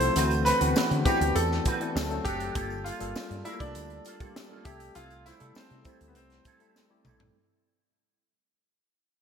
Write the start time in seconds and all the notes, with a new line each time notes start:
Already playing: F3 A3 C4 E4 G4 A4 C5 E5
0.01 muted clean electric guitar stroke, closed hi-hat, tambourine
0.16 D2 E3 A3 C4 D4 F#4 B4, closed hi-hat, tambourine
0.30 closed hi-hat, tambourine
0.45 C4 F#4 B4 C5, snare, closed hi-hat, tambourine
0.60 D2 E3 B3 C4 D4 F#4 B4, closed hi-hat
0.76 snare, tambourine
0.91 D3, muted clean electric guitar stroke, closed hi-hat
1.05 E3 B3 C4 D4 E4 F#4 G4 B4, kick, closed hi-hat, tambourine
1.21 D2, muted clean electric guitar stroke, closed hi-hat, tambourine
1.35 E2 A4, muted clean electric guitar stroke, closed hi-hat, tambourine
1.51 muted clean electric guitar stroke, snare
1.65 C4 F#4 B4, kick, closed hi-hat, tambourine
1.80 E3 B3 C4 D4 E4 F#4 B4, closed hi-hat
1.95 D2 F#3 A3 C4 D4 A4, muted clean electric guitar stroke, snare, tambourine
2.09 F#3 A3 C4 D4 A4, muted clean electric guitar stroke, closed hi-hat
2.25 F#1 C4 F#4 G4 A4, kick, closed hi-hat, tambourine
2.40 C4 F#4 A4, closed hi-hat, tambourine
2.54 G1 G3 A#3 D4 F4 A4, kick, closed hi-hat, tambourine
2.70 tambourine
2.84 A#3 F4 A4, closed hi-hat, tambourine
2.99 G1 G3 A#3 D4 F4 A4, closed hi-hat
3.16 snare, tambourine
3.31 G2, muted clean electric guitar stroke, closed hi-hat
3.44 G3 A3 A#3 D4 E4 F4 A4 A#4, closed hi-hat, tambourine
3.51 A#3
3.60 C2 D4, muted clean electric guitar stroke, kick, closed hi-hat
3.75 D2, muted clean electric guitar stroke, closed hi-hat, tambourine
3.90 muted clean electric guitar stroke, closed hi-hat
4.05 A#3 F4 A4, closed hi-hat, tambourine
4.20 G3 A#3 D4 F4 G4 A4, kick, closed hi-hat, tambourine
4.36 muted clean electric guitar stroke, snare, tambourine
4.49 G3 A#3 D4 F4 A4
4.65 C2 G3 A3 C4 E4 G4 A4 E5, kick, closed hi-hat, tambourine
4.80 muted clean electric guitar stroke, closed hi-hat, tambourine
4.95 C2 C4 E4 F4 A4, closed hi-hat, tambourine
5.10 closed hi-hat, tambourine
5.26 C4 E4 C5, snare, closed hi-hat, tambourine
5.39 C3 G3 A3 C4 E4 A4, closed hi-hat
5.55 C4, muted fretless electric bass stroke, snare, tambourine
5.70 C3, muted clean electric guitar stroke, closed hi-hat
5.85 G3 A3 C4 E4 A4 C5, kick, closed hi-hat, tambourine
6.01 D2, muted clean electric guitar stroke, closed hi-hat
6.08 B3
6.15 C2 C4, muted clean electric guitar stroke, closed hi-hat, tambourine
6.30 muted clean electric guitar stroke, snare, closed hi-hat
6.45 C4 E4 A4, kick, closed hi-hat, tambourine
6.59 G3 A3 C4 E4 A4, closed hi-hat, tambourine
6.76 muted clean electric guitar stroke, snare, tambourine
6.89 G3 A3 C4 E4 G4, muted clean electric guitar stroke
7.05 A#1 C4 E4 A4, mid tom, tambourine
7.20 muted clean electric guitar stroke, floor tom